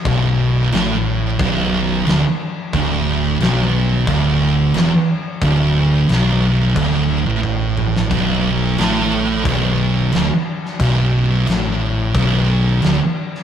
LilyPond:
<<
  \new Staff \with { instrumentName = "Distorted electric guitar" } { \clef bass \time 4/4 \key b \minor \tempo 4 = 89 b,,4 a,4 b,,4 d,16 r8. | d,4 b,,4 d,4 e,16 r8. | d,4 b,,4 d,8. a,4~ a,16 | b,,4 a,4 b,,4 d,16 r8. |
b,,4 a,4 b,,4 d,16 r8. | }
  \new Staff \with { instrumentName = "Distorted electric guitar" } { \clef bass \time 4/4 \key b \minor b,,4 a,4 b,,4 d,16 r8. | d,4 b,,4 d,4 e,16 r8. | d,4 b,,4 d,8. a,4~ a,16 | b,,4 a,4 b,,4 d,16 r8. |
b,,4 a,4 b,,4 d,16 r8. | }
  \new Staff \with { instrumentName = "Fingered electric bass" } { \clef bass \time 4/4 \key b \minor b,,,4 a,,4 b,,,4 d,,16 r8. | d,,4 b,,,4 d,,4 e,,16 r8. | d,,4 b,,,4 d,,8. a,,4~ a,,16 | b,,,4 a,,4 b,,,4 d,,16 r8. |
b,,,4 a,,4 b,,,4 d,,16 r8. | }
  \new DrumStaff \with { instrumentName = "Drums" } \drummode { \time 4/4 <cymc bd>4 <cymc sn>4 <cymc bd>4 <cymc sn>4 | <cymc bd>4 <cymc sn>4 <cymc bd>4 <cymc sn>4 | <cymc bd>4 <cymc sn>4 <cymc bd>4 bd8 toml16 sn16 | <cymc bd>4 <cymc sn>4 <cymc bd>4 <cymc sn>8. sn16 |
<cymc bd>4 <cymc sn>4 <cymc bd>4 <cymc sn>8. sn16 | }
>>